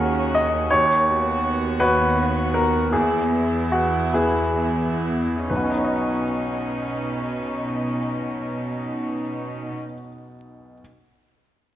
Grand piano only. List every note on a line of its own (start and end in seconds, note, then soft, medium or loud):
0.00 0.71 D#2 soft
0.00 0.66 C#4 soft
0.00 0.67 F#4 soft
0.00 0.73 G#4 medium
0.00 0.73 A#4 medium
0.35 0.68 D#5 medium
0.70 1.76 D#2 soft
0.70 1.75 C#5 medium
1.80 2.88 B3 soft
1.80 2.89 F#4 soft
1.80 2.50 B4 medium
1.80 2.89 C#5 soft
2.54 2.90 A#4 medium
2.92 4.10 E2 soft
2.92 3.68 G#4 medium
3.72 4.11 F#4 soft
4.13 5.45 B3 soft
4.13 5.46 E4 soft
4.13 5.00 G#4 soft
4.13 5.46 B4 soft
5.50 9.73 B1 soft
5.50 5.76 B4 soft
5.57 9.79 B2 soft
5.63 9.86 C#4 soft
5.71 9.93 D#4 soft
5.78 10.00 B4 soft
5.85 10.07 D#5 soft